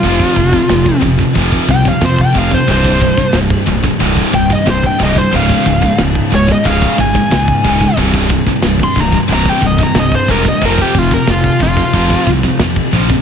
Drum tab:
CC |x---------------|----------------|x---------------|----------------|
RD |--x-x-x-x-x-x-x-|x-x-x-x-x-x-x-x-|--x-x-x-x-x-x-x-|x-x-x-x-x-x-x-x-|
SD |----o-------o---|----o-------o---|----o-------o---|----o-------o---|
BD |oooooooooooooooo|oooooooooooooooo|oooooooooooooooo|oooooooooooooooo|

CC |x---------------|
RD |--x-x-x-x-x-x-x-|
SD |----o-------o---|
BD |oooooooooooooooo|